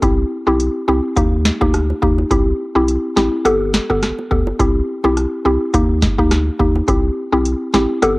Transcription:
0.02 sub bass C2, synth pluck C4 E4 G4, kick, closed hi-hat, high bongo
0.47 sub bass B1, synth pluck C4 E4 G4
0.60 closed hi-hat
0.88 sub bass C2, synth pluck C4 E4 G4, high bongo
1.16 sub bass D#2, synth pluck A#3 D#4 G4, kick, closed hi-hat, high bongo
1.45 snare
1.61 sub bass D2, synth pluck A#3 D#4 G4, kick, high bongo
1.74 cross-stick, closed hi-hat
1.90 high bongo
2.02 sub bass D#2, synth pluck A#3 D#4 G4, kick, low bongo
2.18 high bongo
2.31 sub bass C2, synth pluck C4 E4 G4, kick, closed hi-hat, high bongo
2.75 sub bass B1, synth pluck C4 E4 G4
2.88 closed hi-hat
3.16 sub bass A1, synth pluck C4 E4 G4, snare, high bongo
3.45 sub bass G1, synth pluck B3 G4 A4, closed hi-hat, high bongo
3.74 snare
3.90 sub bass G1, synth pluck B3 G4 A4, kick, high bongo
4.03 cross-stick, snare, closed hi-hat
4.19 high bongo
4.31 sub bass D2, synth pluck B3 G4 A4, kick, low bongo
4.47 high bongo
4.59 sub bass C2, synth pluck C4 E4 G4, kick, closed hi-hat, high bongo
5.04 sub bass B1, synth pluck C4 E4 G4, high bongo
5.17 cross-stick, closed hi-hat
5.45 sub bass C2, synth pluck C4 E4 G4, high bongo
5.74 sub bass D#2, synth pluck A#3 D#4 G4, kick, closed hi-hat, high bongo
6.02 kick, snare
6.18 sub bass D2, synth pluck A#3 D#4 G4, kick
6.31 cross-stick, snare, closed hi-hat
6.59 sub bass D#2, synth pluck A#3 D#4 G4, kick, low bongo
6.76 high bongo
6.88 sub bass C2, synth pluck C4 E4 G4, kick, closed hi-hat, high bongo
7.32 sub bass B1, synth pluck C4 E4 G4
7.46 closed hi-hat
7.74 sub bass A1, synth pluck C4 E4 G4, snare, high bongo
8.02 sub bass G1, synth pluck B3 G4 A4, closed hi-hat, high bongo

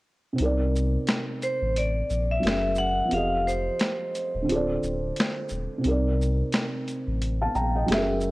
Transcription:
0.33 felt piano C3 C4
0.38 sub bass C2, felt piano D#4 A#4, closed hi-hat
0.45 felt piano D5
0.76 shaker
1.07 snare, closed hi-hat
1.42 vibraphone C5, closed hi-hat, shaker
1.62 sub bass A1
1.76 vibraphone D5, closed hi-hat
2.10 sub bass A#1, shaker
2.31 vibraphone E5
2.40 felt piano F#3 C#4 G#4, closed hi-hat
2.44 sub bass F#1, felt piano A#4 E5, snare
2.75 vibraphone F#5, shaker
3.05 felt piano F3 C4
3.11 sub bass F1, felt piano G4 A4, vibraphone F5, closed hi-hat
3.18 felt piano D#5
3.47 vibraphone C5, shaker
3.79 snare, closed hi-hat
4.15 closed hi-hat, shaker
4.35 sub bass D#1
4.42 felt piano D3 C4
4.49 sub bass D1, felt piano F4 A4, closed hi-hat
4.55 felt piano D5
4.83 sub bass D1, shaker
5.16 snare, closed hi-hat
5.49 sub bass D#1, shaker
5.78 felt piano C3 C4
5.84 sub bass C2, felt piano D#4 A#4, closed hi-hat
5.91 felt piano D5
6.21 shaker
6.52 snare, closed hi-hat
6.88 closed hi-hat, shaker
7.07 sub bass A1
7.22 closed hi-hat
7.42 felt piano F5 A5
7.55 sub bass A#1, felt piano G5 A#5, shaker
7.76 felt piano D#5 G5
7.86 sub bass F#1, felt piano F#3 C#4 G#4, closed hi-hat
7.91 felt piano A4 E5, snare
7.98 felt piano A#4
8.21 shaker

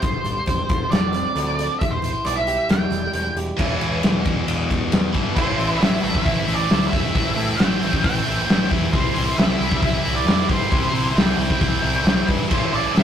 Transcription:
0.00 picked electric bass G1, steel-string acoustic guitar G2, lead electric guitar C5, kick, closed hi-hat
0.23 picked electric bass G1, steel-string acoustic guitar G3, closed hi-hat
0.46 picked electric bass E1, steel-string acoustic guitar C4, kick, closed hi-hat
0.69 picked electric bass F1, steel-string acoustic guitar F3, kick, closed hi-hat
0.90 picked electric bass F1, steel-string acoustic guitar D4, lead electric guitar D5, snare, closed hi-hat
1.13 steel-string acoustic guitar C4, closed hi-hat
1.35 picked electric bass D2, steel-string acoustic guitar D4, closed hi-hat
1.59 steel-string acoustic guitar A4, closed hi-hat
1.79 picked electric bass E1, steel-string acoustic guitar E2, lead electric guitar E5, kick, closed hi-hat
1.91 lead electric guitar C5
2.02 steel-string acoustic guitar E3, closed hi-hat
2.25 picked electric bass B1, steel-string acoustic guitar G3, lead electric guitar D5, closed hi-hat
2.36 lead electric guitar E5
2.47 steel-string acoustic guitar G4, closed hi-hat
2.69 picked electric bass E1, steel-string acoustic guitar E4, lead electric guitar G5, snare, closed hi-hat
2.90 picked electric bass E1, steel-string acoustic guitar G3, closed hi-hat
3.13 picked electric bass E1, steel-string acoustic guitar E4, closed hi-hat
3.35 picked electric bass E1, steel-string acoustic guitar G4, closed hi-hat
3.57 picked electric bass E1, distorted electric guitar E2 B2 E3, kick, crash
3.80 picked electric bass E1, ride
4.03 picked electric bass E1, snare, ride
4.25 picked electric bass E1, kick, ride
4.47 picked electric bass E1, ride
4.70 picked electric bass E1, kick, ride
4.91 picked electric bass E1, snare, ride
5.12 picked electric bass G1, distorted electric guitar E2 B2 E3, kick, ride
5.35 picked electric bass A1, distorted electric guitar A2 E3 A3 C4 E4, lead electric guitar C5, kick, crash
5.57 picked electric bass A1, distorted electric guitar A3 C4 E4, open hi-hat
5.70 lead electric guitar B4
5.78 picked electric bass A1, distorted electric guitar E3 A3 C4 E4, lead electric guitar E5, open hi-hat
5.83 snare
6.01 picked electric bass A1, distorted electric guitar A2 E3 A3 C4 E4, open hi-hat
6.15 kick
6.22 distorted electric guitar E3 A3, lead electric guitar E5, kick, open hi-hat
6.27 picked electric bass A1, distorted electric guitar C4 E4
6.47 picked electric bass A1, distorted electric guitar A3 C4 E4, open hi-hat
6.55 lead electric guitar D5
6.69 picked electric bass D2, distorted electric guitar A2 E3 A3 C4 E4, snare, open hi-hat
6.87 distorted electric guitar E4, lead electric guitar E5
6.92 picked electric bass E1, distorted electric guitar A3 C4, kick, open hi-hat
7.13 picked electric bass A1, distorted electric guitar A2 E3 A3 C4 E4, kick, open hi-hat
7.36 picked electric bass A2, distorted electric guitar A3 C4 E4, open hi-hat
7.56 picked electric bass A1, distorted electric guitar E3 A3 C4, lead electric guitar G5, snare, open hi-hat
7.61 distorted electric guitar E4
7.80 picked electric bass A1, distorted electric guitar A2 E3 A3 C4 E4, open hi-hat
7.93 kick
8.02 picked electric bass A1, distorted electric guitar E3 A3 C4 E4, lead electric guitar G5, kick, open hi-hat
8.24 picked electric bass A1, distorted electric guitar A3 C4 E4, open hi-hat
8.46 picked electric bass A1, distorted electric guitar A2 E3 A3 C4 E4, open hi-hat
8.50 snare
8.69 picked electric bass E2, distorted electric guitar A3 C4 E4, kick, open hi-hat
8.90 picked electric bass C2, distorted electric guitar C3 E3 G3 C4 E4, lead electric guitar C5, kick, open hi-hat
9.13 distorted electric guitar G3 C4 E4, open hi-hat
9.17 picked electric bass C2
9.35 picked electric bass C2, distorted electric guitar E3 G3 C4 E4, lead electric guitar E5, open hi-hat
9.39 snare
9.58 picked electric bass C2, distorted electric guitar C3 E3 G3 C4 E4, open hi-hat
9.71 kick
9.80 picked electric bass C2, distorted electric guitar E3 G3 C4 E4, lead electric guitar E5, kick, open hi-hat
10.03 picked electric bass C2, distorted electric guitar G3 C4 E4, open hi-hat
10.15 lead electric guitar D5
10.25 picked electric bass F2, distorted electric guitar C3 E3 G3 C4 E4, snare, open hi-hat
10.49 picked electric bass G1, distorted electric guitar G3 C4 E4, lead electric guitar C5, kick, open hi-hat
10.70 picked electric bass C2, distorted electric guitar C3 E3 G3 C4 E4, kick, open hi-hat
10.92 picked electric bass C3, distorted electric guitar G3 C4 E4, open hi-hat
11.15 picked electric bass C2, distorted electric guitar E3 G3 C4 E4, lead electric guitar G5, snare, open hi-hat
11.37 picked electric bass C2, distorted electric guitar C3 E3 G3 C4 E4, lead electric guitar G5, open hi-hat
11.50 kick
11.59 picked electric bass C2, distorted electric guitar E3 G3 C4 E4, kick, open hi-hat
11.81 picked electric bass C2, distorted electric guitar G3 C4 E4, open hi-hat
12.03 picked electric bass C2, distorted electric guitar C3 E3 G3 C4 E4, snare, open hi-hat
12.26 picked electric bass G2, distorted electric guitar G3 C4 E4, kick, open hi-hat
12.49 picked electric bass A1, distorted electric guitar A2 E3 A3 C4 E4, lead electric guitar C5, kick, crash
12.72 picked electric bass A1, distorted electric guitar A3 C4 E4, lead electric guitar D5, open hi-hat
12.94 picked electric bass A1, distorted electric guitar E3 A3 C4 E4, lead electric guitar E5, snare, open hi-hat

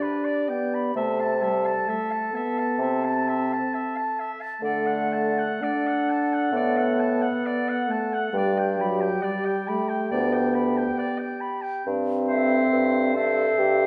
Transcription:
Already playing: french horn D4, clarinet G4, flute D5
0.02 oboe B4
0.25 oboe D5
0.49 french horn B3, oboe G5
0.74 oboe B5
0.95 bassoon C3, french horn A3, clarinet A4, oboe E5, flute A5
1.20 oboe A5
1.42 french horn G3, oboe E5
1.66 oboe A5
1.89 french horn A3, oboe E5
2.11 oboe A5
2.33 french horn B3, oboe E5
2.59 oboe A5
2.79 bassoon C3, french horn C4, oboe E5
3.05 oboe A5
3.28 oboe E5
3.53 oboe A5
3.74 oboe E5
3.96 oboe A5
4.20 oboe E5
4.41 oboe A5
4.61 bassoon D3, french horn A3, clarinet A4, oboe D5, flute F#5
4.86 oboe F#5
5.13 oboe A5
5.39 oboe F#5
5.62 french horn D4, oboe D5
5.87 oboe F#5
6.10 oboe A5
6.34 oboe F#5
6.52 bassoon A2, french horn B3, oboe D5
6.77 oboe F#5
7.00 oboe A5
7.22 oboe F#5
7.46 oboe D5
7.69 oboe F#5
7.89 french horn A3, oboe A5
8.14 oboe F#5
8.33 bassoon G2, french horn G3, clarinet G4, oboe D5, flute G5
8.58 oboe G5
8.79 french horn F#3, oboe B5
9.01 oboe G5
9.23 french horn G3, oboe D5
9.45 oboe G5
9.68 french horn A3, oboe B5
9.89 oboe G5
10.11 bassoon D2, french horn B3, oboe D5
10.33 oboe G5
10.55 oboe B5
10.77 oboe G5
10.98 oboe D5
11.18 oboe G5
11.41 oboe B5
11.62 oboe G5
11.87 bassoon G2, french horn C4
12.28 clarinet A4, oboe C5, flute E5
12.73 bassoon G2
13.15 french horn A4, clarinet A4, oboe C5, flute E5
13.59 bassoon G2, french horn G4

